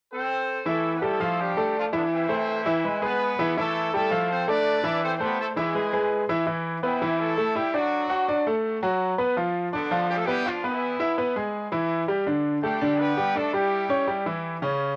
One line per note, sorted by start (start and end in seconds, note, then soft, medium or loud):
0.13 0.63 C4 medium
0.13 0.63 A4 medium
0.13 0.63 C5 medium
0.66 0.96 E3 medium
0.66 0.95 A3 medium
0.66 0.96 E4 medium
0.66 0.95 E4 medium
0.66 0.95 A4 medium
0.66 0.96 E5 medium
0.96 1.03 B3 medium
0.96 1.03 B4 medium
1.02 1.17 G3 medium
1.02 1.39 A3 medium
1.02 1.40 E4 medium
1.02 1.17 G4 medium
1.02 1.17 A4 medium
1.02 1.39 A4 medium
1.20 1.50 F3 medium
1.20 1.50 F4 medium
1.20 1.50 F5 medium
1.40 1.76 G3 medium
1.40 1.76 D4 medium
1.40 1.76 G4 medium
1.57 1.87 A3 medium
1.57 1.87 A4 medium
1.57 1.87 D5 medium
1.77 1.85 F3 medium
1.77 1.85 D4 medium
1.77 1.85 F4 medium
1.92 2.03 D3 medium
1.92 2.23 E3 medium
1.92 2.02 B3 medium
1.92 2.03 D4 medium
1.92 2.23 E4 medium
1.92 2.23 E5 medium
2.13 3.00 E3 medium
2.13 2.81 C4 medium
2.13 3.00 E4 loud
2.29 2.59 A3 medium
2.29 2.59 A4 medium
2.29 2.59 C5 medium
2.66 2.81 E3 medium
2.66 2.81 E4 medium
2.66 2.81 E5 medium
2.84 2.99 G#3 medium
2.84 2.99 G#4 medium
2.84 2.99 B4 medium
3.01 3.32 G#3 medium
3.01 3.54 B3 loud
3.01 3.32 G#4 medium
3.01 3.54 G#4 medium
3.01 3.32 B4 medium
3.01 3.54 B4 loud
3.39 3.54 E3 medium
3.39 3.54 E4 medium
3.39 3.54 E5 medium
3.57 3.87 E3 medium
3.57 3.92 A3 loud
3.57 3.87 E4 medium
3.57 3.91 E4 medium
3.57 3.92 A4 loud
3.57 3.87 E5 medium
3.93 4.08 G3 medium
3.93 4.28 A3 medium
3.93 4.27 E4 medium
3.93 4.08 G4 medium
3.93 4.09 A4 medium
3.93 4.28 A4 loud
4.11 4.41 F3 medium
4.11 4.41 F4 medium
4.11 4.41 F5 medium
4.30 4.48 C4 medium
4.30 4.48 A4 medium
4.30 4.48 C5 loud
4.48 4.77 A3 medium
4.48 5.03 D4 loud
4.48 4.78 A4 medium
4.48 5.02 B4 medium
4.48 4.78 D5 medium
4.48 5.03 D5 loud
4.83 5.13 E3 medium
4.83 5.13 E4 medium
4.83 5.14 E5 medium
5.04 5.15 C4 medium
5.04 5.16 A4 medium
5.04 5.15 C5 loud
5.16 5.50 A3 medium
5.16 5.20 C4 medium
5.16 5.20 C5 medium
5.20 5.40 B3 medium
5.20 5.39 G4 medium
5.20 5.50 A4 medium
5.20 5.40 B4 medium
5.20 5.50 C5 medium
5.40 5.48 A3 medium
5.40 5.48 E4 medium
5.40 5.48 A4 medium
5.56 5.71 E3 medium
5.56 6.26 G#3 medium
5.56 5.71 E4 medium
5.56 6.25 E4 medium
5.56 6.26 G#4 medium
5.56 5.72 E5 medium
5.74 5.89 G#3 medium
5.74 5.89 G#4 medium
5.74 5.90 B4 medium
5.93 6.23 G#3 medium
5.93 6.23 G#4 medium
5.93 6.23 B4 medium
6.29 6.44 E3 medium
6.29 6.44 E4 medium
6.29 6.44 E5 medium
6.47 6.76 E3 medium
6.47 6.77 E4 medium
6.83 7.18 E3 medium
6.83 6.98 B3 medium
6.83 7.18 C4 medium
6.83 7.18 E4 medium
6.83 6.98 B4 medium
7.02 7.31 E3 medium
7.02 7.31 E4 medium
7.20 7.56 A3 medium
7.20 7.56 E4 medium
7.20 7.56 A4 loud
7.37 7.52 A3 medium
7.37 7.53 A4 medium
7.55 7.74 G3 medium
7.55 7.70 E4 medium
7.55 7.75 E4 medium
7.55 7.74 G4 medium
7.55 7.71 E5 medium
7.74 8.47 F#3 medium
7.74 8.03 D4 medium
7.74 8.47 D4 medium
7.74 8.47 F#4 medium
7.74 8.04 D5 medium
8.10 8.25 F#4 medium
8.10 8.25 F#5 medium
8.28 8.43 D4 medium
8.28 8.43 D5 medium
8.47 8.76 A3 medium
8.47 8.77 A4 medium
8.83 9.12 F#3 medium
8.83 9.12 F#4 medium
9.18 9.33 B3 medium
9.18 9.33 B4 medium
9.37 9.67 F3 medium
9.37 9.67 F4 medium
9.73 10.07 D3 medium
9.73 10.07 B3 medium
9.73 9.88 D4 medium
9.73 10.07 D4 medium
9.73 9.88 D5 medium
9.91 10.21 F3 medium
9.91 10.21 F4 medium
10.10 10.16 G3 loud
10.10 10.17 D4 medium
10.10 10.16 G4 loud
10.17 10.24 A3 medium
10.17 10.24 A4 medium
10.26 10.47 G3 loud
10.26 10.42 B3 medium
10.26 10.47 E4 medium
10.26 10.47 G4 loud
10.26 10.43 B4 medium
10.46 10.65 F3 medium
10.46 10.65 D4 medium
10.46 10.61 F4 medium
10.46 10.65 F4 loud
10.46 10.61 F5 medium
10.64 11.34 E3 medium
10.64 10.94 B3 medium
10.64 11.34 B3 medium
10.64 11.34 E4 medium
10.64 10.94 B4 medium
11.00 11.15 E4 medium
11.00 11.15 E5 medium
11.18 11.33 B3 medium
11.18 11.33 B4 medium
11.36 11.66 G#3 medium
11.36 11.66 G#4 medium
11.72 12.02 E3 medium
11.72 12.02 E4 medium
12.08 12.23 G3 medium
12.08 12.23 G4 medium
12.27 12.56 D3 medium
12.27 12.57 D4 medium
12.63 12.97 G3 medium
12.63 12.78 A3 medium
12.63 12.97 D4 medium
12.63 12.97 G4 medium
12.63 12.78 A4 medium
12.82 13.11 D3 medium
12.82 13.11 D4 medium
12.99 13.35 B3 loud
12.99 13.36 G4 medium
12.99 13.35 B4 loud
13.17 13.32 G3 medium
13.17 13.32 G4 medium
13.35 13.54 A3 medium
13.35 13.50 D4 medium
13.35 13.54 D4 medium
13.35 13.54 A4 medium
13.35 13.50 D5 medium
13.53 13.83 G3 medium
13.53 14.22 G3 medium
13.53 14.23 E4 medium
13.53 13.83 G4 medium
13.53 14.22 G4 medium
13.89 14.04 C#4 medium
13.89 14.04 C#5 medium
14.07 14.22 G3 medium
14.07 14.22 G4 medium
14.26 14.55 E3 medium
14.26 14.56 E4 medium
14.62 14.91 C#3 medium
14.62 14.92 C#4 medium